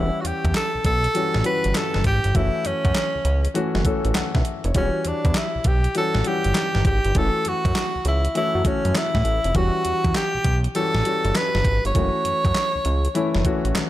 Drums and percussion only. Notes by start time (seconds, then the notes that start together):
0.25 closed hi-hat
0.45 kick, closed hi-hat
0.54 snare, clap, closed hi-hat
0.84 kick, closed hi-hat
1.04 closed hi-hat
1.15 closed hi-hat
1.34 snare
1.44 closed hi-hat
1.64 closed hi-hat
1.75 snare, clap, closed hi-hat
1.94 snare
2.04 kick, closed hi-hat
2.24 closed hi-hat
2.35 kick, closed hi-hat
2.65 closed hi-hat
2.85 kick, closed hi-hat
2.95 snare, clap, closed hi-hat
3.25 closed hi-hat
3.45 closed hi-hat
3.55 closed hi-hat
3.75 snare
3.85 kick, closed hi-hat
4.05 closed hi-hat
4.15 snare, clap, closed hi-hat
4.35 kick, snare
4.45 closed hi-hat
4.64 closed hi-hat
4.75 kick, closed hi-hat
5.05 closed hi-hat
5.25 kick, closed hi-hat
5.34 snare, clap, closed hi-hat
5.64 kick, closed hi-hat
5.84 closed hi-hat
5.95 closed hi-hat
6.15 snare
6.25 closed hi-hat
6.44 closed hi-hat
6.55 snare, clap, closed hi-hat
6.75 snare
6.85 kick, closed hi-hat
7.05 closed hi-hat
7.15 kick, closed hi-hat
7.45 closed hi-hat
7.65 kick, closed hi-hat
7.75 snare, clap, closed hi-hat
8.05 closed hi-hat
8.25 closed hi-hat
8.35 closed hi-hat
8.65 kick, closed hi-hat
8.85 closed hi-hat
8.95 snare, clap, closed hi-hat
9.15 kick, snare
9.25 closed hi-hat
9.44 closed hi-hat
9.55 kick, closed hi-hat
9.85 closed hi-hat
10.04 kick, closed hi-hat
10.15 snare, clap, closed hi-hat
10.44 kick, closed hi-hat
10.64 closed hi-hat
10.75 closed hi-hat
10.95 snare
11.05 closed hi-hat
11.25 closed hi-hat
11.35 snare, clap, closed hi-hat
11.55 snare
11.65 kick, closed hi-hat
11.85 closed hi-hat
11.95 kick, closed hi-hat
12.25 closed hi-hat
12.45 kick, closed hi-hat
12.55 snare, clap, closed hi-hat
12.85 closed hi-hat
13.05 closed hi-hat
13.15 closed hi-hat
13.35 snare
13.45 kick, closed hi-hat
13.65 closed hi-hat
13.75 snare, clap, closed hi-hat